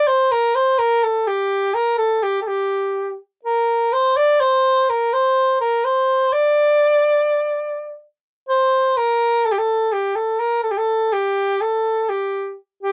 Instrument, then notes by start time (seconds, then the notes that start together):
soprano saxophone
0.07 C5
0.32 A#4
0.55 C5
0.79 A#4
1.04 A4
1.27 G4
1.74 A#4
1.98 A4
2.23 G4
2.42 A4
2.47 G4
3.45 A#4
3.93 C5
4.17 D5
4.40 C5
4.89 A#4
5.13 C5
5.61 A#4
5.85 C5
6.33 D5
8.49 C5
8.97 A#4
9.46 A4
9.52 G4
9.58 A4
9.93 G4
10.16 A4
10.40 A#4
10.63 A4
10.71 G4
10.78 A4
11.13 G4
11.61 A4
12.09 G4
12.83 G4